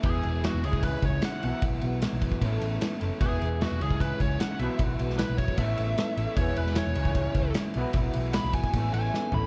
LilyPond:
<<
  \new Staff \with { instrumentName = "Lead electric guitar" } { \time 4/4 \key e \major \tempo 4 = 152 gis'4 fis'8 gis'8 b'8 cis''8 fis''8 fis''8 | r1 | gis'4 fis'8 gis'8 b'8 cis''8 fis''8 e''8 | r4 b'8 cis''8 e''2 |
cis''8 b'8 cis''2 r4 | r4 b''8 gis''4 gis''4 b''8 | }
  \new Staff \with { instrumentName = "Clean electric guitar" } { \time 4/4 \key e \major <e b e' gis'>4. <cis e gis cis' gis'>2 <b, e b e' fis'>8~ | <b, e b e' fis'>2 <a b e' a' cis''>2 | <e b e' gis'>4. <cis e gis cis' gis'>2 <b, e b e' fis' b'>8~ | <b, e b e' fis' b'>2 <a b e' a' cis''>2 |
<e b e' gis'>4. <cis e gis cis' gis'>2 <b, e b e' fis' b'>8~ | <b, e b e' fis' b'>2 <a b e' a' cis''>2 | }
  \new Staff \with { instrumentName = "Overdriven electric guitar" } { \clef bass \time 4/4 \key e \major <e gis b e'>4. <cis gis cis' e'>4. <cis gis cis' e'>8 <b, e fis b e'>8~ | <b, e fis b e'>4 <b, e fis b e'>4 <a, e a cis' e'>4. <a, e a cis' e'>8 | <e gis b e'>4. <cis gis cis' e'>4. <cis gis cis' e'>8 <b, e fis b e'>8~ | <b, e fis b e'>4 <b, e fis b e'>4 <a, e a cis' e'>4. <a, e a cis' e'>8 |
<e gis b e'>4. <cis gis cis' e'>4. <cis gis cis' e'>8 <b, e fis b e'>8~ | <b, e fis b e'>4 <b, e fis b e'>4 <a, e a cis' e'>4. <a, e a cis' e'>8 | }
  \new Staff \with { instrumentName = "Picked electric bass" } { \clef bass \time 4/4 \key e \major e,,8 e,,8. e,,16 cis,4 cis,8 r8 b,,16 r16 | b,,8 b,,8. b,,8 r16 a,,8 a,,8 r8 fis,,16 r16 | e,,8 e,,8. e,,16 cis,4 cis,8 r8 b,,16 r16 | b,,8 b,,8. b,,8 r16 a,,8 a,,8 r8 a,,16 r16 |
e,,8 e,,8. e,,16 cis,4 cis,8 r8 b,,16 r16 | b,,8 b,,8. b,,8 r16 a,,8 a,,8 r8 a,,16 r16 | }
  \new DrumStaff \with { instrumentName = "Drums" } \drummode { \time 4/4 <bd cymr>8 cymr8 <cymr sn>8 cymr16 bd16 <bd cymr>8 <bd cymr>8 <cymr sn>8 cymr8 | <bd cymr>8 cymr8 <cymr sn>8 <bd cymr>16 bd16 <bd cymr>8 cymr8 <cymr sn>8 cymr8 | <bd cymr>8 cymr8 <cymr sn>8 cymr16 bd16 <bd cymr>8 <bd cymr>8 <cymr sn>8 cymr8 | <bd cymr>8 cymr16 sn16 <cymr sn>8 <bd cymr>16 bd16 <bd cymr>8 cymr8 <cymr sn>8 cymr8 |
<bd cymr>8 cymr16 sn16 <cymr sn>8 cymr16 bd16 <bd cymr>8 <bd cymr>8 <cymr sn>8 cymr8 | <bd cymr>8 cymr8 <cymr sn>8 <bd cymr>16 bd16 <bd cymr>8 cymr8 sn8 tomfh8 | }
>>